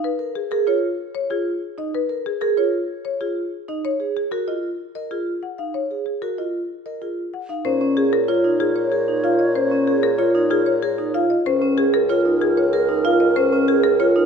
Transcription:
0.04 marimba B4
0.19 vibraphone A#4
0.35 marimba G#4
0.51 vibraphone G#4, marimba A#4
0.67 vibraphone F4, marimba C#5
1.15 marimba C#5
1.30 vibraphone F4, marimba G#4
1.78 vibraphone D#4, marimba D#5
1.95 marimba B4
2.09 vibraphone A#4
2.26 marimba G#4
2.41 vibraphone G#4, marimba A#4
2.57 vibraphone F4, marimba C#5
3.05 marimba C#5
3.21 vibraphone F4, marimba G#4
3.68 vibraphone D#4, marimba D#5
3.85 marimba C#5
4.00 vibraphone G#4
4.17 marimba G#4
4.31 vibraphone F#4, marimba A#4
4.48 vibraphone F4, marimba D#5
4.95 vibraphone A#4, marimba D#5
5.11 vibraphone F4, marimba G#4
5.43 marimba F#5
5.58 vibraphone D#4, marimba F5
5.74 marimba C#5
5.91 vibraphone G#4
6.06 marimba G#4
6.22 vibraphone F#4, marimba A#4
6.38 vibraphone F4, marimba D#5
6.86 vibraphone A#4, marimba D#5
7.02 vibraphone F4, marimba G#4
7.34 marimba F#5
7.49 vibraphone D#4, marimba F5
7.64 bassoon A#2, vibraphone C#4, marimba C5, alto flute C#5
7.81 vibraphone C#4
7.97 vibraphone G#4, marimba G#4
8.13 marimba A#4
8.28 vibraphone F4, marimba C#5
8.44 vibraphone D#4
8.60 vibraphone F4, marimba G#4
8.76 marimba C#5
8.92 marimba G#4, vibraphone A#4
9.08 vibraphone D#4
9.24 vibraphone F4, marimba F5
9.39 marimba D#5
9.55 vibraphone C#4, marimba C5
9.71 vibraphone C#4
9.87 vibraphone G#4, marimba G#4
10.03 marimba A#4
10.19 vibraphone F4, marimba C#5
10.35 vibraphone D#4
10.50 vibraphone F4, marimba G#4
10.66 marimba C#5
10.82 marimba G#4, vibraphone A#4
10.98 vibraphone D#4
11.14 vibraphone F4, marimba F5
11.30 marimba D#5
11.46 bassoon C#2, vibraphone C#4, alto flute A#4, marimba C5
11.62 vibraphone C#4
11.78 marimba G#4, vibraphone G#4
11.94 marimba A#4
12.09 vibraphone F4, marimba C#5
12.25 vibraphone D#4
12.41 vibraphone F4, marimba G#4
12.57 marimba C#5
12.73 marimba G#4, vibraphone A#4
12.89 vibraphone D#4
13.05 vibraphone F4, marimba F5
13.20 marimba D#5
13.36 vibraphone C#4, marimba C5
13.52 vibraphone C#4
13.68 vibraphone G#4, marimba G#4
13.84 marimba A#4
14.00 vibraphone F4, marimba C#5
14.16 vibraphone D#4

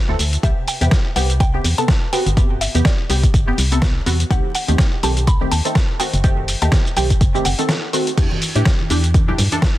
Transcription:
Already playing: synth pluck F#5
0.08 fm bass D2, synth stab E3 C4 A4
0.19 fm bass D2, open hi-hat, shaker
0.33 closed hi-hat, shaker
0.43 fm bass C2, synth stab C3 B3 G4, synth pluck E5, kick, closed hi-hat, shaker
0.68 synth pluck G5, open hi-hat, shaker
0.81 fm bass E2, synth stab C3 B3 G4, closed hi-hat, shaker
0.91 kick, snare, closed hi-hat, shaker
1.16 fm bass C2, synth stab C3 B3 G4, synth pluck F#5, open hi-hat, shaker
1.30 closed hi-hat, shaker
1.40 synth pluck G5, kick, closed hi-hat, shaker
1.54 synth stab C3 B3 G4
1.64 fm bass E2, open hi-hat, shaker
1.78 synth stab C3 B3 A4, synth pluck A5, closed hi-hat, shaker
1.88 kick, snare, closed hi-hat, shaker
2.12 synth stab C3 B3 F#4, synth pluck G5, open hi-hat, shaker
2.26 fm bass G1, closed hi-hat, shaker
2.37 synth stab C3 B3 G4, kick, closed hi-hat, shaker
2.61 synth pluck E5, open hi-hat, shaker
2.75 fm bass E2, synth stab C3 B3 G4, closed hi-hat, shaker
2.85 synth pluck D5, kick, snare, closed hi-hat, shaker
3.09 fm bass C2, synth stab C3 B3 G4, open hi-hat, shaker
3.23 kick, closed hi-hat, shaker
3.34 fm bass G1, kick, closed hi-hat, shaker
3.47 synth stab C3 B3 G4
3.58 fm bass C2, open hi-hat, shaker
3.71 synth stab C3 B3 A4, closed hi-hat, shaker
3.82 kick, snare, closed hi-hat, shaker
4.06 fm bass E2, synth stab C3 B3 F#4, open hi-hat, shaker
4.20 closed hi-hat, shaker
4.30 fm bass B1, synth stab D#3 A3 C4 G4, synth pluck F#5, kick, closed hi-hat, shaker
4.55 synth pluck F#5, open hi-hat, shaker
4.68 fm bass D#2, synth stab D#3 A3 C4 G4, closed hi-hat, shaker
4.78 kick, snare, closed hi-hat, shaker
5.03 fm bass B1, synth stab D#3 A3 C4 G4, synth pluck A5, open hi-hat, shaker
5.17 closed hi-hat, shaker
5.27 synth pluck B5, kick, closed hi-hat, shaker
5.41 synth stab D#3 A3 C4 G4
5.51 fm bass D#2, synth pluck A5, open hi-hat, shaker
5.65 synth stab D#3 A3 C4 A4, closed hi-hat, shaker
5.75 kick, snare, closed hi-hat, shaker
5.99 synth stab D#3 A3 C4 F#4, synth pluck G5, open hi-hat, shaker
6.14 fm bass F#1, closed hi-hat, shaker
6.24 synth stab D#3 A3 C4 G4, kick, closed hi-hat, shaker
6.48 open hi-hat, shaker
6.62 fm bass D#2, synth stab D#3 A3 C4 G4, synth pluck A5, closed hi-hat, shaker
6.72 kick, snare, closed hi-hat, shaker
6.87 shaker
6.96 fm bass B1, synth stab D#3 A3 C4 G4, synth pluck G5, open hi-hat, shaker
7.10 kick, closed hi-hat, shaker
7.21 fm bass F#1, kick, closed hi-hat, shaker
7.34 synth stab D#3 A3 C4 G4, shaker
7.45 fm bass F#1, synth pluck F#5, open hi-hat, shaker
7.58 synth stab D#3 A3 C4 A4, closed hi-hat, shaker
7.69 snare, closed hi-hat, shaker
7.93 synth stab D#3 A3 C4 F#4, open hi-hat, shaker
8.07 closed hi-hat, shaker
8.17 fm bass E2, synth stab E3 D4 G4, kick, closed hi-hat, crash, shaker
8.31 high conga
8.42 open hi-hat, shaker
8.55 fm bass A2, synth stab E3 D4 G4, closed hi-hat, shaker
8.65 kick, snare, closed hi-hat, shaker
8.80 high conga
8.89 fm bass E2, synth stab E3 D4 G4, open hi-hat, muted conga, shaker
9.04 closed hi-hat, shaker
9.14 kick, closed hi-hat, high conga, shaker
9.28 synth stab E3 D4 G4, low conga
9.38 fm bass G2, open hi-hat, low conga, shaker
9.52 synth stab E3 D4 A4, closed hi-hat, muted conga, high conga, shaker
9.62 kick, snare, closed hi-hat, shaker

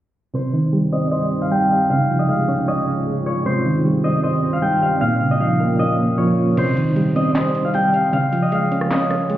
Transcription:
0.34 synth keys C3, ambient pad C3 G3 D#4, harp C5
0.53 synth keys D#3
0.73 synth keys G3
0.92 synth keys C4, harp D#5
1.11 synth keys C5, harp D#5
1.32 synth keys C4
1.42 harp F5
1.51 synth keys G3, harp G5
1.71 harp F5
1.90 ambient pad C#3 G#3 F4, synth keys C#3, harp F5
2.09 synth keys F3
2.19 harp D#5
2.29 synth keys G#3, harp F5
2.48 synth keys C#4
2.68 synth keys C#5, harp D#5
2.87 synth keys C#4
3.06 synth keys G#3
3.26 harp C#5
3.46 synth keys C3, ambient pad C3 G3 D#4, harp C5
3.65 synth keys D#3
3.85 synth keys G3
4.04 synth keys C4, harp D#5
4.23 synth keys C5, harp D#5
4.43 synth keys C4
4.53 harp F5
4.62 synth keys G3, harp G5
4.82 harp F5
5.01 synth keys A#2, ambient pad A#2 F3 C#4, harp F5
5.21 synth keys C#3
5.31 harp D#5
5.40 synth keys F3, harp F5
5.60 synth keys A#3
5.79 synth keys C#4, harp D#5
5.99 synth keys A#3
6.18 synth keys F3, harp C#5
6.57 synth keys C3, harp C5, closed hi-hat, crash
6.77 synth keys D#3, closed hi-hat
6.96 synth keys G3, closed hi-hat
7.16 synth keys C4, harp D#5, closed hi-hat
7.35 synth keys C5, harp D#5, snare, clap, closed hi-hat
7.55 synth keys C4, closed hi-hat
7.65 harp F5
7.74 synth keys G3, harp G5, closed hi-hat
7.94 harp F5, closed hi-hat
8.13 synth keys C#3, harp F5, closed hi-hat
8.32 synth keys F3, closed hi-hat
8.42 harp D#5
8.52 synth keys G#3, harp F5, closed hi-hat
8.72 synth keys C#4, closed hi-hat
8.81 cross-stick
8.91 synth keys C#5, harp D#5, snare, clap, closed hi-hat
9.11 synth keys C#4, cross-stick, closed hi-hat
9.30 synth keys G#3, closed hi-hat

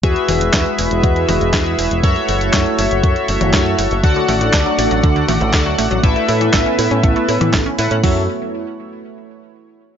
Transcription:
0.03 fingered electric bass E2, analog synth pad G#3 E4 F#4 B4, analog polysynth F#4 G#4 B4 E5, kick, closed hi-hat
0.16 closed hi-hat
0.29 fingered electric bass E1, open hi-hat, high tom
0.41 closed hi-hat
0.53 fingered electric bass E2, kick, snare, clap, closed hi-hat
0.66 closed hi-hat
0.79 fingered electric bass E1, open hi-hat
0.91 fingered electric bass E1, closed hi-hat
1.03 fingered electric bass E2, kick, closed hi-hat
1.16 closed hi-hat
1.28 fingered electric bass E1, open hi-hat, high tom
1.41 fingered electric bass E1, closed hi-hat
1.54 fingered electric bass E2, analog polysynth F#4 G#4 B4 E5, kick, snare, clap, closed hi-hat
1.66 closed hi-hat
1.78 fingered electric bass E1, open hi-hat
1.91 fingered electric bass E1, closed hi-hat
2.04 fingered electric bass F#2, analog synth pad A3 C#5, analog polysynth F#4 A4 C#5 E5, kick, closed hi-hat
2.16 closed hi-hat
2.29 fingered electric bass F#1, open hi-hat
2.41 closed hi-hat
2.54 fingered electric bass F#2, kick, snare, clap, closed hi-hat
2.66 closed hi-hat
2.78 fingered electric bass F#1, open hi-hat
2.91 fingered electric bass F#1, closed hi-hat
3.03 fingered electric bass F#2, kick, closed hi-hat
3.16 closed hi-hat
3.28 fingered electric bass F#1, open hi-hat
3.41 fingered electric bass F#1, closed hi-hat, high tom
3.54 fingered electric bass F#2, analog polysynth F#4 A4 C#5 E5, kick, snare, clap, closed hi-hat
3.66 closed hi-hat
3.78 fingered electric bass F#1, open hi-hat
3.91 fingered electric bass F#1, closed hi-hat
4.04 fingered electric bass D2, synth arpeggio sound D3, analog synth pad D4 D5, analog polysynth F#4 A4 D5 F#5, kick, closed hi-hat
4.16 synth arpeggio sound D3, closed hi-hat
4.29 fingered electric bass A1, synth arpeggio sound A3, open hi-hat, high tom
4.41 synth arpeggio sound A2, closed hi-hat
4.54 fingered electric bass D2, synth arpeggio sound D4, kick, snare, clap, closed hi-hat
4.66 synth arpeggio sound F#3, closed hi-hat
4.78 fingered electric bass A1, synth arpeggio sound A3, open hi-hat
4.91 fingered electric bass A1, synth arpeggio sound F#3, closed hi-hat
5.03 fingered electric bass D2, synth arpeggio sound D3, kick, closed hi-hat
5.16 synth arpeggio sound D3, closed hi-hat
5.28 fingered electric bass A1, synth arpeggio sound A3, open hi-hat, high tom
5.41 fingered electric bass A1, synth arpeggio sound A2, closed hi-hat
5.53 fingered electric bass D2, synth arpeggio sound D4, analog polysynth F#4 A4 D5 F#5, kick, snare, clap, closed hi-hat
5.66 synth arpeggio sound F#3, closed hi-hat
5.78 fingered electric bass A1, synth arpeggio sound A3, open hi-hat
5.91 fingered electric bass A1, synth arpeggio sound F#3, closed hi-hat
6.03 fingered electric bass A1, synth arpeggio sound A3, analog synth pad B3 E4 B4, analog polysynth E4 A4 B4 E5, kick, closed hi-hat
6.16 synth arpeggio sound A3, closed hi-hat
6.29 fingered electric bass A2, synth arpeggio sound E4, open hi-hat
6.41 synth arpeggio sound E3, closed hi-hat
6.53 fingered electric bass A1, synth arpeggio sound A4, kick, snare, clap, closed hi-hat
6.66 synth arpeggio sound C#4, closed hi-hat
6.79 fingered electric bass A2, synth arpeggio sound E4, open hi-hat
6.91 fingered electric bass A2, synth arpeggio sound C#4, closed hi-hat
7.03 fingered electric bass A1, synth arpeggio sound A3, kick, closed hi-hat
7.16 synth arpeggio sound A3, closed hi-hat
7.28 fingered electric bass A2, synth arpeggio sound E4, open hi-hat
7.41 fingered electric bass A2, synth arpeggio sound E3, closed hi-hat, high tom
7.54 fingered electric bass A1, synth arpeggio sound A4, kick, snare, clap, closed hi-hat
7.66 synth arpeggio sound C#4, closed hi-hat
7.79 fingered electric bass A2, synth arpeggio sound E4, analog polysynth E4 A4 B4 F#5, open hi-hat
7.91 fingered electric bass A2, synth arpeggio sound C#4, closed hi-hat
8.03 fingered electric bass F#2, synth arpeggio sound F#3, analog synth pad A3 E4 F#4 C#5, analog polysynth F#4 A4 C#5 E5, kick, open hi-hat

